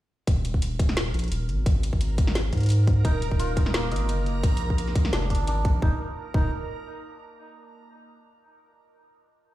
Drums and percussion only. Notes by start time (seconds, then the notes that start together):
0.27 kick, closed hi-hat
0.45 closed hi-hat
0.54 kick
0.62 closed hi-hat
0.79 kick, closed hi-hat
0.89 snare
0.97 snare, closed hi-hat
1.14 closed hi-hat
1.19 closed hi-hat
1.24 closed hi-hat
1.28 closed hi-hat
1.32 closed hi-hat
1.49 closed hi-hat
1.66 kick, closed hi-hat
1.83 closed hi-hat
1.93 kick
2.01 closed hi-hat
2.18 kick, closed hi-hat
2.27 snare
2.35 snare, closed hi-hat
2.53 kick, closed hi-hat
2.57 closed hi-hat
2.60 closed hi-hat
2.63 closed hi-hat
2.66 closed hi-hat
2.69 closed hi-hat
2.72 closed hi-hat
2.87 kick, closed hi-hat
3.05 kick, closed hi-hat
3.22 closed hi-hat
3.31 kick
3.40 closed hi-hat
3.57 kick, closed hi-hat
3.66 snare
3.74 snare, closed hi-hat
3.92 closed hi-hat
3.96 closed hi-hat
4.09 closed hi-hat
4.26 closed hi-hat
4.43 kick, closed hi-hat
4.57 closed hi-hat
4.70 kick
4.78 closed hi-hat
4.88 snare
4.95 kick, closed hi-hat
5.05 snare
5.13 snare, closed hi-hat
5.22 snare
5.30 kick, closed hi-hat
5.35 closed hi-hat
5.47 closed hi-hat
5.65 kick, closed hi-hat
5.82 kick
6.34 kick